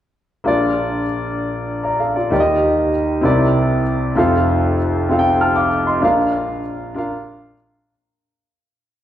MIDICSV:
0, 0, Header, 1, 2, 480
1, 0, Start_track
1, 0, Key_signature, -2, "major"
1, 0, Tempo, 619835
1, 347, Time_signature, 6, 3, 24, 8
1, 7000, End_track
2, 0, Start_track
2, 0, Title_t, "Grand piano"
2, 0, Program_c, 0, 0
2, 341, Note_on_c, 0, 58, 60
2, 347, Note_on_c, 0, 62, 52
2, 350, Note_on_c, 0, 34, 49
2, 350, Note_on_c, 0, 46, 51
2, 354, Note_on_c, 0, 65, 55
2, 369, Note_on_c, 0, 74, 75
2, 516, Control_c, 0, 64, 127
2, 792, Note_off_c, 0, 58, 0
2, 795, Note_off_c, 0, 62, 0
2, 798, Note_off_c, 0, 65, 0
2, 806, Note_off_c, 0, 74, 0
2, 1420, Note_on_c, 0, 82, 44
2, 1430, Note_on_c, 0, 74, 40
2, 1538, Note_off_c, 0, 82, 0
2, 1543, Note_off_c, 0, 74, 0
2, 1546, Note_on_c, 0, 77, 49
2, 1549, Note_on_c, 0, 69, 39
2, 1661, Note_off_c, 0, 77, 0
2, 1662, Note_off_c, 0, 69, 0
2, 1672, Note_on_c, 0, 74, 50
2, 1675, Note_on_c, 0, 65, 40
2, 1759, Note_off_c, 0, 34, 0
2, 1759, Note_off_c, 0, 46, 0
2, 1779, Note_on_c, 0, 58, 61
2, 1789, Note_on_c, 0, 63, 60
2, 1793, Note_on_c, 0, 39, 48
2, 1794, Note_off_c, 0, 74, 0
2, 1795, Note_on_c, 0, 51, 50
2, 1797, Control_c, 0, 64, 0
2, 1798, Note_on_c, 0, 67, 57
2, 1805, Note_on_c, 0, 74, 61
2, 1847, Note_off_c, 0, 74, 0
2, 1859, Note_on_c, 0, 75, 72
2, 1900, Note_off_c, 0, 65, 0
2, 1953, Control_c, 0, 64, 127
2, 2231, Note_off_c, 0, 58, 0
2, 2236, Note_off_c, 0, 63, 0
2, 2241, Note_off_c, 0, 67, 0
2, 2271, Note_off_c, 0, 75, 0
2, 2480, Note_off_c, 0, 39, 0
2, 2481, Note_off_c, 0, 51, 0
2, 2487, Note_on_c, 0, 60, 62
2, 2496, Note_on_c, 0, 64, 58
2, 2502, Note_on_c, 0, 48, 56
2, 2505, Note_on_c, 0, 36, 55
2, 2512, Note_on_c, 0, 70, 52
2, 2517, Note_on_c, 0, 74, 68
2, 2519, Control_c, 0, 64, 0
2, 2658, Control_c, 0, 64, 127
2, 2945, Note_off_c, 0, 60, 0
2, 2950, Note_off_c, 0, 64, 0
2, 2957, Note_off_c, 0, 70, 0
2, 2960, Note_off_c, 0, 74, 0
2, 3194, Note_off_c, 0, 48, 0
2, 3196, Note_off_c, 0, 36, 0
2, 3214, Note_on_c, 0, 60, 67
2, 3226, Note_on_c, 0, 65, 65
2, 3228, Note_on_c, 0, 41, 56
2, 3229, Note_on_c, 0, 29, 56
2, 3237, Note_on_c, 0, 69, 62
2, 3238, Control_c, 0, 64, 0
2, 3244, Note_on_c, 0, 77, 77
2, 3352, Control_c, 0, 64, 127
2, 3669, Note_off_c, 0, 60, 0
2, 3675, Note_off_c, 0, 65, 0
2, 3680, Note_off_c, 0, 69, 0
2, 3684, Note_off_c, 0, 77, 0
2, 3939, Note_on_c, 0, 60, 61
2, 3951, Note_on_c, 0, 65, 52
2, 3960, Note_on_c, 0, 69, 57
2, 3967, Note_on_c, 0, 77, 61
2, 4008, Note_off_c, 0, 77, 0
2, 4019, Note_on_c, 0, 79, 75
2, 4189, Note_on_c, 0, 89, 52
2, 4191, Note_on_c, 0, 81, 47
2, 4224, Note_off_c, 0, 79, 0
2, 4302, Note_off_c, 0, 89, 0
2, 4303, Note_off_c, 0, 81, 0
2, 4304, Note_on_c, 0, 86, 57
2, 4311, Note_on_c, 0, 77, 47
2, 4391, Note_off_c, 0, 60, 0
2, 4397, Note_off_c, 0, 65, 0
2, 4401, Note_off_c, 0, 69, 0
2, 4534, Note_off_c, 0, 86, 0
2, 4537, Note_off_c, 0, 77, 0
2, 4545, Note_on_c, 0, 84, 52
2, 4548, Note_on_c, 0, 75, 40
2, 4637, Note_off_c, 0, 29, 0
2, 4637, Note_off_c, 0, 41, 0
2, 4653, Note_on_c, 0, 62, 65
2, 4660, Note_on_c, 0, 65, 65
2, 4662, Note_on_c, 0, 34, 48
2, 4662, Note_on_c, 0, 46, 58
2, 4670, Note_on_c, 0, 70, 59
2, 4677, Control_c, 0, 64, 0
2, 4682, Note_on_c, 0, 77, 73
2, 4774, Note_off_c, 0, 84, 0
2, 4776, Note_off_c, 0, 75, 0
2, 4834, Control_c, 0, 64, 127
2, 5108, Note_off_c, 0, 62, 0
2, 5111, Note_off_c, 0, 65, 0
2, 5116, Note_off_c, 0, 70, 0
2, 5122, Note_off_c, 0, 77, 0
2, 5378, Note_on_c, 0, 62, 61
2, 5386, Note_on_c, 0, 65, 56
2, 5396, Note_on_c, 0, 70, 56
2, 5408, Note_on_c, 0, 77, 69
2, 5831, Note_off_c, 0, 62, 0
2, 5835, Note_off_c, 0, 65, 0
2, 5840, Note_off_c, 0, 70, 0
2, 5846, Note_off_c, 0, 77, 0
2, 6074, Note_off_c, 0, 34, 0
2, 6074, Note_off_c, 0, 46, 0
2, 6120, Control_c, 0, 64, 0
2, 7000, End_track
0, 0, End_of_file